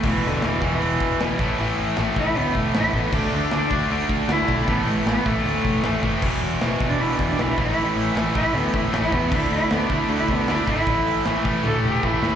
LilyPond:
<<
  \new Staff \with { instrumentName = "Cello" } { \time 4/4 \key a \major \tempo 4 = 155 e8 d8 e8 e2 r8 | r4. e'8 b8 a8 e'8 b8 | a8 d'2 r8 e'4 | b8 a8 b8 a2 r8 |
r4 \tuplet 3/2 { r4 d'8 e'8 d'8 d'8 e'8 e'8 e'8~ } | e'8 r4 e'8 b8 e'8 e'8 b8 | e'8 e'8 b8 e'8 e'8 b8 e'8 e'8~ | e'4. r8 a'8 g'8 e'8 r8 | }
  \new Staff \with { instrumentName = "Distorted electric guitar" } { \clef bass \time 4/4 \key a \major <e, b, e>4 <e, b, e>8 <e, b, e>8 <e, b, e>4 <e, b, e>8 <a, e a>8 | <a, e a>4 <a, e a>8 <a, e a>8 <a, e a>4 <a, e a>8 <a, e a>8 | <d a d'>4 <d a d'>8 <d a d'>8 <d a d'>4 <d a d'>8 <d a d'>8 | <a, e a>4 <a, e a>8 <a, e a>8 <a, e a>4 <a, e a>8 <a, e a>8 |
<e, b, e>4 <e, b, e>8 <e, b, e>8 <e, b, e>4 <e, b, e>8 <a, e a>8 | <a, e a>4 <a, e a>8 <a, e a>8 <a, e a>4 <a, e a>8 <a, e a>8 | <d a d'>4 <d a d'>8 <d a d'>8 <d a d'>4 <d a d'>8 <d a d'>8 | <a, e a>4 <a, e a>8 <a, e a>8 <a, e a>4 <a, e a>8 <a, e a>8 | }
  \new Staff \with { instrumentName = "Distorted electric guitar" } { \clef bass \time 4/4 \key a \major <e, b, e>4. <e, b, e>4. <e, b, e>8 <a, e a>8~ | <a, e a>4 <a, e a>4. <a, e a>4 r8 | <d a d'>4. <d a d'>4. <d a d'>4 | <a, e a>4. <a, e a>4. <a, e a>4 |
<e, b, e>4. <e, b, e>4. <e, b, e>8 <a, e a>8~ | <a, e a>4 <a, e a>4. <a, e a>4 r8 | <d a d'>4. <d a d'>4. <d a d'>4 | <a, e a>4. <a, e a>4. <a, e a>4 | }
  \new Staff \with { instrumentName = "Overdriven electric guitar" } { \clef bass \time 4/4 \key a \major <e, b, e>4 <e, b, e>8 <e, b, e>8 <e, b, e>4 <e, b, e>8 <a, e a>8 | <a, e a>4 <a, e a>8 <a, e a>8 <a, e a>4 <a, e a>8 <a, e a>8 | <d a d'>4 <d a d'>8 <d a d'>8 <d a d'>4 <d a d'>8 <d a d'>8 | <a, e a>4 <a, e a>8 <a, e a>8 <a, e a>4 <a, e a>8 <a, e a>8 |
<e, b, e>4 <e, b, e>8 <e, b, e>8 <e, b, e>4 <e, b, e>8 <a, e a>8 | <a, e a>4 <a, e a>8 <a, e a>8 <a, e a>4 <a, e a>8 <a, e a>8 | <d a d'>4 <d a d'>8 <d a d'>8 <d a d'>4 <d a d'>8 <d a d'>8 | <a, e a>4 <a, e a>8 <a, e a>8 <a, e a>4 <a, e a>8 <a, e a>8 | }
  \new Staff \with { instrumentName = "Picked electric bass" } { \clef bass \time 4/4 \key a \major e,,8 e,,8 e,,8 e,,8 e,,8 e,,8 e,,8 a,,8 | a,,8 a,,8 a,,8 a,,8 d,8 e,,8 a,,8 a,,8 | d,8 d,8 d,8 d,8 d,8 d,8 d,8 b,,8 | a,,8 a,,8 a,,8 a,,8 d,8 e,,8 a,,8 fis,,8 |
e,,8 e,,8 e,,8 e,,8 e,,8 e,,8 b,,8 a,,8 | a,,8 a,,8 a,,8 a,,8 d,8 e,,8 a,,8 e,8 | d,8 d,8 d,8 d,8 d,8 d,8 d,8 gis,,8 | a,,8 a,,8 a,,8 a,,8 d,8 e,,8 a,,8 dis,8 | }
  \new DrumStaff \with { instrumentName = "Drums" } \drummode { \time 4/4 <cymc bd>8 hho8 <hho sn>8 <hho bd>8 hho8 <hho bd>8 <hho sn>8 <hho bd sn>8 | hho8 hho8 <hho sn>8 <hho bd>8 hho8 <hho bd>8 <hho sn>8 <hho bd sn>8 | <cymc bd>8 hho8 <hho sn>8 <hho bd>8 hho8 <hho bd>8 <hho sn>8 <hho bd sn>8 | <hho bd>8 hho8 sn8 <hho bd>8 hho8 <hho bd>8 <hho sn>8 <hho bd>8 |
<cymc bd>8 hho8 <hho sn>8 <hho bd>8 hho8 <hho bd>16 sn16 <hho sn>8 <hho bd sn>8 | hho8 hho8 <hho sn>8 <hho bd>8 hho8 <hho bd>8 <hho sn>8 <hho bd>8 | <cymc bd>8 hho8 <hho sn>8 <hho bd>8 hho8 <hho bd>8 <hho sn>8 <hho bd sn>8 | <hho bd>8 hho8 <hho sn>8 <hho bd>8 tommh4 bd8 sn8 | }
>>